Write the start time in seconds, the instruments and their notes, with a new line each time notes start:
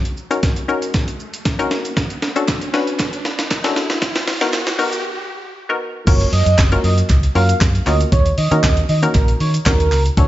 Already playing: riser
0.05 closed hi-hat, shaker
0.17 shaker
0.31 synth pluck C#4 D#4 F#4 A#4, closed hi-hat, shaker
0.43 kick, snare, closed hi-hat, shaker
0.56 closed hi-hat, shaker
0.68 synth pluck C#4 D#4 F#4 A#4, shaker
0.82 closed hi-hat, shaker
0.94 kick, snare, closed hi-hat, shaker
1.08 closed hi-hat, shaker
1.20 shaker
1.34 closed hi-hat, shaker
1.45 kick, snare, closed hi-hat, shaker
1.59 synth pluck C#4 D#4 F#4 A#4, closed hi-hat, shaker
1.71 snare, shaker
1.85 closed hi-hat, shaker
1.97 kick, snare, closed hi-hat, shaker
2.10 closed hi-hat, shaker
2.22 snare, shaker
2.36 synth pluck C#4 D4 F#4 A4, closed hi-hat, shaker
2.48 kick, snare, clap, closed hi-hat, shaker
2.61 closed hi-hat, shaker
2.73 synth pluck C#4 D4 F#4 B4, snare, shaker
2.87 closed hi-hat, shaker
2.99 kick, snare, clap, closed hi-hat, shaker
3.13 closed hi-hat, shaker
3.25 snare, shaker
3.39 snare, closed hi-hat, shaker
3.51 kick, snare, clap, closed hi-hat, shaker
3.64 synth pluck C#4 D4 F#4 A4, snare, closed hi-hat, shaker
3.76 snare, shaker
3.90 snare, closed hi-hat, shaker
4.02 kick, snare, closed hi-hat, shaker
4.15 snare, closed hi-hat, shaker
4.27 snare, open hi-hat, shaker
4.41 synth pluck B3 D#4 F#4 A#4, snare, closed hi-hat, shaker
4.53 snare, clap, closed hi-hat, shaker
4.67 snare, closed hi-hat, shaker
4.79 synth pluck B3 D#4 F#4 A#4, open hi-hat, shaker
4.93 closed hi-hat, shaker
5.69 synth pluck B3 D#4 F#4 A#4
6.07 fingered electric bass F#1, synth pluck A#3 C#4 F4 F#4 A#4, digital synth lead C#5, kick, closed hi-hat, crash, shaker
6.21 closed hi-hat, shaker
6.33 fingered electric bass F#2, digital synth lead D#5, open hi-hat, shaker
6.46 fingered electric bass F#2, closed hi-hat, shaker
6.58 fingered electric bass F#1, kick, snare, clap, closed hi-hat, shaker
6.72 synth pluck A#3 C#4 F4 F#4 A#4, closed hi-hat, shaker
6.84 fingered electric bass F#2, digital synth lead D#5, open hi-hat, shaker
6.98 closed hi-hat, shaker
7.09 fingered electric bass C#2, kick, clap, closed hi-hat, shaker
7.23 closed hi-hat, shaker
7.35 fingered electric bass F#2, synth pluck A#3 C#4 F4 F#4 A#4, digital synth lead F5, open hi-hat, shaker
7.49 closed hi-hat, shaker
7.61 fingered electric bass F#2, kick, snare, clap, closed hi-hat, shaker
7.75 closed hi-hat, shaker
7.86 fingered electric bass D2, synth pluck A#3 C#4 F4 F#4 A#4, digital synth lead D#5, clap, open hi-hat, shaker
8.01 closed hi-hat, shaker
8.12 fingered electric bass D#2, digital synth lead C#5, kick, closed hi-hat, shaker
8.26 closed hi-hat, shaker
8.38 fingered electric bass D#3, digital synth lead D#5, open hi-hat, shaker
8.51 fingered electric bass D#3, synth pluck A#3 C#4 D#4 F#4 A#4, closed hi-hat, shaker
8.64 fingered electric bass D#2, kick, snare, clap, closed hi-hat, shaker
8.77 closed hi-hat, shaker
8.89 fingered electric bass D#3, digital synth lead D#5, open hi-hat, shaker
9.02 synth pluck A#3 C#4 D#4 F#4 A#4, closed hi-hat, shaker
9.14 fingered electric bass A#1, digital synth lead A#4, kick, clap, closed hi-hat, shaker
9.28 closed hi-hat, shaker
9.40 fingered electric bass D#3, digital synth lead C#5, open hi-hat, shaker
9.54 closed hi-hat, shaker
9.66 fingered electric bass D#2, synth pluck A#3 C#4 D#4 F#4 A#4, digital synth lead A#4, kick, snare, clap, closed hi-hat, shaker
9.80 closed hi-hat, shaker
9.92 fingered electric bass C#2, clap, open hi-hat, shaker
10.06 closed hi-hat, shaker
10.17 fingered electric bass D2, synth pluck A3 C#4 D4 F#4 A4, digital synth lead C#5, kick, closed hi-hat, shaker